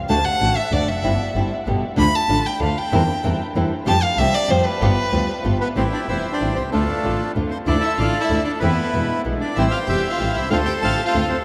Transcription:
0.08 D2 D3 A3 D4 F#4 A5
0.25 F#5
0.40 A1 D3 A3 D4 F#4
0.57 E5
0.71 D2 D3 A3 D4 F#4 D5
0.88 F1 E5
1.02 G1 G3 C4 E4
1.35 G1 G3 C4 E4
1.66 G1 B2 D3 G3 B3 G4
1.96 D2 D3 A3 D4 F4 A4 B5
2.15 A5
2.29 A1 D3 A3 D4 F4 A4
2.46 G5
2.60 D2 D3 A3 D4 F4 A4 F5
2.78 G5
2.92 E2 E3 G3 C4 E4 A#4
3.24 E2 E3 G3 C4 E4 A#4
3.55 E2 E3 G3 C4 E4 A#4
3.86 F2 F3 G3 A3 C4 F4 G4 A5
4.03 F5
4.17 C2 F3 G3 A3 C4 F4 G4 E5
4.35 D5
4.49 F2 F3 G3 A3 C4 F4 G4 C5
4.66 B4
4.81 G1 G3 B3 F4 G4
5.13 D2 G3 B3 F4 G4
5.44 G1 G3 B3 F4 G4
5.61 B3 B4
5.76 A1 E3 G3 A3 C4 E4 G4 C5
5.92 D4 D5
6.08 E1 E3 G3 A3 C4 E4 G4 C5 E5
6.32 D4 G4 D5
6.40 A1 E3 G3 A3 C4 E4 G4
6.55 C2 C4 C5
6.72 D2 D3 A3 D4 F4 A4
7.04 A1 D3 A3 D4 F4
7.35 D2 D3 A3 D4 F4
7.50 C4 C5
7.66 D2 D3 A3 D4 E4 A4 D5
7.81 E4 E5
7.97 A1 D3 A3 D4 E4 F4 A4 D5 F5
8.20 E4 A4 E5
8.30 D2 D3 A3 D4 E4
8.44 D4 D5
8.60 E2 E3 A3 B3 C4 E4 B4
8.93 E2 B2 E3 G#3 B3 E4
9.24 B1 B2 E3 G#3 B3 E4
9.39 D4 D5
9.56 A1 E3 G3 A3 C4 E4 G4 C5 E5
9.71 F4 F5
9.86 E1 E3 G3 A3 C4 E4 G4 C5 E5 G5
10.10 F4 C5 F5
10.18 A1 E3 G3 A3 C4 E4 G4
10.34 C2 E4 E5
10.50 D2 D3 A3 C4 D4 F4 A4 C5 F5
10.65 G4 G5
10.81 A1 D3 A3 C4 D4 F4 A4 C5 F5 A5
11.05 F4 A4 C5 F5
11.14 D2 D3 A3 C4 D4 F4
11.30 D2 C4 C5

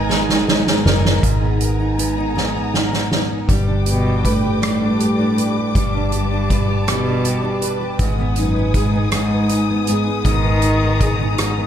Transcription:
Already playing: G#1 G#2 B3 D#4 A#4 G#5 A#5
0.09 G#2 D#3 G#3 B3 D#4 A#4, snare
0.29 snare
0.47 D#4, snare
0.67 snare
0.84 F#1 G#3 B3 D#4 A#4, snare
1.05 snare
1.23 G#1 G#2 G#5 A#5, kick, closed hi-hat
1.42 B3
1.61 A#4, closed hi-hat
1.80 D#4
1.98 B3, closed hi-hat
2.18 D#4
2.36 G#2, snare
2.55 B3
2.74 A#4, snare
2.93 D#4, snare
3.12 B3, snare
3.31 D#4
3.49 G1 G3 B4 G5 D6, kick, closed hi-hat
3.68 D4
3.86 B2 G4, closed hi-hat
4.06 D4
4.25 A2 B4, kick, closed hi-hat
4.43 G4
4.62 G3, cross-stick, closed hi-hat
4.81 D4
5.00 G4, closed hi-hat
5.19 D4
5.38 B4, closed hi-hat
5.57 G4
5.75 G1 G2 G3 A5, kick, closed hi-hat
5.94 D4
6.12 G4, closed hi-hat
6.31 D4
6.50 B4, kick, cross-stick, closed hi-hat
6.68 G4
6.87 B2 G3, cross-stick, closed hi-hat
7.07 D4
7.24 G4, closed hi-hat
7.42 D4
7.61 B4, closed hi-hat
7.80 G4
7.99 G#1 G#2 G#5 D#6, kick, closed hi-hat
8.18 B3
8.36 F#2 D#4, closed hi-hat
8.56 B3
8.74 G#2 G#4, kick, closed hi-hat
8.93 D#4
9.12 G#2, cross-stick, closed hi-hat
9.31 B3
9.49 D#4, closed hi-hat
9.70 B3
9.87 G#2 G#4, closed hi-hat
10.07 D#4
10.24 G#1 G#2 D#3 A#5, kick, closed hi-hat
10.44 B3
10.62 D#4, closed hi-hat
10.82 B3
11.00 G#4, kick, closed hi-hat
11.20 D#4
11.38 G#2, cross-stick, closed hi-hat
11.57 B3

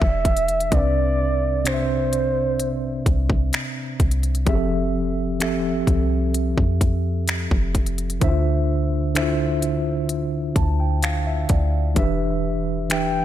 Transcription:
Already playing: E5
0.02 E1, kick
0.25 kick, closed hi-hat
0.37 closed hi-hat
0.48 closed hi-hat
0.60 closed hi-hat
0.71 C2 C3 C4 D4 B4 D5 E5, kick, closed hi-hat
1.64 C3 C4 D4 C5 D5, finger snap, closed hi-hat
1.74 E5
2.13 closed hi-hat
2.60 closed hi-hat
3.06 C2, kick, closed hi-hat
3.30 kick
3.53 finger snap, closed hi-hat
4.00 C2, kick, closed hi-hat
4.11 closed hi-hat
4.23 closed hi-hat
4.35 closed hi-hat
4.46 F1 F3 C4 G4 G#4 E5, kick, closed hi-hat
4.55 A4
5.39 F3 C4 G4 A4 E5, finger snap, closed hi-hat
5.87 C2, kick, closed hi-hat
6.34 closed hi-hat
6.58 F2, kick
6.81 kick, closed hi-hat
7.28 finger snap, closed hi-hat
7.51 F1, kick
7.75 kick, closed hi-hat
7.86 closed hi-hat
7.98 closed hi-hat
8.10 closed hi-hat
8.20 D2 D3 D4 E4 C5 E5, kick, closed hi-hat
8.29 F4
9.14 D3 D4 E4 C5 E5, finger snap, closed hi-hat
9.22 F4
9.62 closed hi-hat
10.09 closed hi-hat
10.56 D2 A5, kick, closed hi-hat
10.80 G5
11.03 F5, finger snap, closed hi-hat
11.27 E5
11.49 D2 D5, kick, closed hi-hat
11.95 E1 E3 D4 G4 B4 E5, kick, closed hi-hat
12.89 E3 D4 G4 B4 E5 G5, finger snap, closed hi-hat

